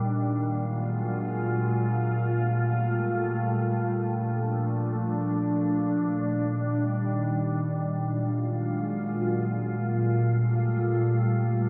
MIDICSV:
0, 0, Header, 1, 2, 480
1, 0, Start_track
1, 0, Tempo, 500000
1, 11225, End_track
2, 0, Start_track
2, 0, Title_t, "Ambient pad"
2, 0, Program_c, 0, 92
2, 0, Note_on_c, 0, 46, 78
2, 28, Note_on_c, 0, 54, 72
2, 28, Note_on_c, 0, 56, 71
2, 29, Note_on_c, 0, 65, 90
2, 1883, Note_off_c, 0, 54, 0
2, 1883, Note_off_c, 0, 56, 0
2, 1902, Note_on_c, 0, 55, 71
2, 1902, Note_on_c, 0, 57, 73
2, 3738, Note_off_c, 0, 65, 0
2, 3757, Note_off_c, 0, 55, 0
2, 3757, Note_off_c, 0, 57, 0
2, 3775, Note_on_c, 0, 53, 72
2, 3776, Note_on_c, 0, 57, 71
2, 3776, Note_on_c, 0, 62, 87
2, 5630, Note_off_c, 0, 53, 0
2, 5630, Note_off_c, 0, 57, 0
2, 5648, Note_on_c, 0, 51, 71
2, 5648, Note_on_c, 0, 55, 72
2, 7483, Note_off_c, 0, 46, 0
2, 7485, Note_off_c, 0, 62, 0
2, 7503, Note_off_c, 0, 51, 0
2, 7503, Note_off_c, 0, 55, 0
2, 7520, Note_on_c, 0, 46, 74
2, 7520, Note_on_c, 0, 54, 74
2, 7520, Note_on_c, 0, 56, 72
2, 7520, Note_on_c, 0, 65, 90
2, 9375, Note_off_c, 0, 54, 0
2, 9375, Note_off_c, 0, 56, 0
2, 9375, Note_off_c, 0, 65, 0
2, 9395, Note_on_c, 0, 55, 72
2, 9395, Note_on_c, 0, 57, 72
2, 9395, Note_on_c, 0, 65, 83
2, 11225, Note_off_c, 0, 46, 0
2, 11225, Note_off_c, 0, 55, 0
2, 11225, Note_off_c, 0, 57, 0
2, 11225, Note_off_c, 0, 65, 0
2, 11225, End_track
0, 0, End_of_file